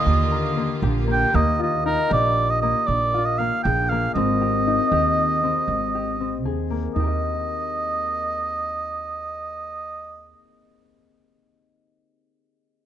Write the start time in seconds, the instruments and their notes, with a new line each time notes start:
Already playing: string section D3 A#3 F4 G4, harp D3 A#3 G4, oboe D#5
0.06 upright bass D#2
0.31 harp A#4
0.57 harp A#3
0.82 upright bass A#1, harp G4
1.07 harp A#3
1.12 oboe G5
1.34 upright bass D#2, harp A#3, oboe D#5
1.59 harp F4, oboe D#5
1.86 harp D#4, oboe A#4
2.10 upright bass A#1, harp G4, oboe D5
2.50 oboe D#5
2.62 harp A#3, oboe D#5
2.87 upright bass A#1, oboe D5
3.14 harp F4
3.25 oboe D#5
3.38 harp A#3, oboe F5
3.64 upright bass A#1, harp G#4, oboe G5
3.89 harp A#3, oboe F5
4.15 upright bass G#1, harp C4, oboe D#5
4.41 harp G4
4.67 harp D#4
4.92 upright bass D#2, harp G4
5.43 harp C4
5.68 upright bass G#1
5.95 harp G4
6.20 harp C4
6.45 upright bass D#2, harp G#4
6.70 harp A#3
6.95 upright bass D#2, harp D#4, oboe D#5
7.00 harp G4 A#4
7.07 harp D#5